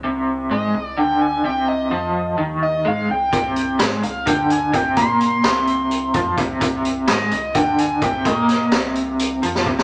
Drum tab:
HH |--------------|--------------|x-x-x-x-x-x-x-|x-x-x-x-x-x-x-|
SD |--------------|--------------|----o---------|----o---------|
BD |--------------|--------------|o-------o---o-|o---------o-o-|

HH |x-x-x-x-x-x-x-|x-x-x-x-x-x---|
SD |----o---------|--o-o------o-o|
BD |o-------o---o-|o-----------o-|